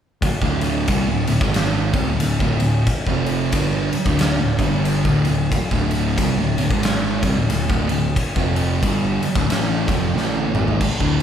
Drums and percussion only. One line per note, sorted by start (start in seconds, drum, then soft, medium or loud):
0.22 kick loud
0.22 ride medium
0.42 kick loud
0.61 ride medium
0.88 kick loud
0.88 ride loud
1.27 ride medium
1.41 kick loud
1.54 snare loud
1.54 ride loud
1.93 kick loud
1.93 ride medium
2.20 ride loud
2.40 kick loud
2.60 ride medium
2.87 kick loud
2.87 ride loud
3.07 kick medium
3.26 ride medium
3.52 kick loud
3.52 ride loud
3.93 ride medium
4.06 kick loud
4.19 snare loud
4.19 ride loud
4.59 kick loud
4.59 ride medium
4.85 ride medium
5.05 kick loud
5.25 ride medium
5.52 kick loud
5.52 ride medium
5.71 kick loud
5.91 ride medium
6.18 kick loud
6.18 ride loud
6.58 ride medium
6.71 kick loud
6.83 snare loud
6.83 ride loud
7.23 kick loud
7.23 ride medium
7.50 ride loud
7.70 kick loud
7.89 ride medium
8.16 kick loud
8.16 ride loud
8.36 kick loud
8.56 ride medium
8.83 kick loud
8.83 ride loud
9.23 ride medium
9.36 kick loud
9.50 snare loud
9.50 ride loud
9.88 kick loud
9.88 ride medium
10.17 snare medium
10.35 high tom medium
10.55 mid tom medium
10.68 floor tom medium
10.81 kick loud
10.81 crash loud
10.81 splash medium
11.00 kick loud